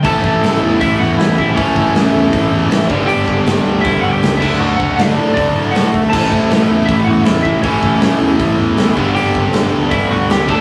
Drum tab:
CC |--------|--------|-------x|--------|
HH |o-o-o-o-|o-o-o-o-|o-o-o-o-|--o-o-o-|
SD |--o---o-|--o---o-|--o---o-|--o---o-|
BD |oo--o--o|oo--o--o|-o--o--o|-o--o--o|

CC |x-------|--------|--------|
HH |--o-o-o-|o-o-o-o-|o-o-o-o-|
SD |--o---o-|--o---o-|--o---o-|
BD |oo--o--o|oo--o--o|-o--o--o|